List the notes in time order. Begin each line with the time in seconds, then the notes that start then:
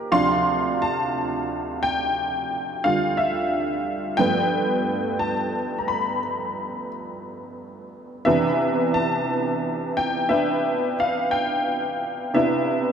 Already playing: C#3 D#3 G3 A#3 F4 G4 A#4 C5
0.11 D2 C3 F3 D4 F5 C6
0.82 A5
1.83 G5
2.84 D3 G3 F4 F5
3.17 E5
4.17 G2 F3 A3 B3 B4 G5
5.19 A5
5.79 A#5
5.88 B5
8.25 C3 E3 B3 D4 B4 E5
8.94 A5
9.97 G5
10.29 B3 D4 B4 E5
11.00 F5
11.31 G5
12.34 C3 B3 D4 E4 B4 E5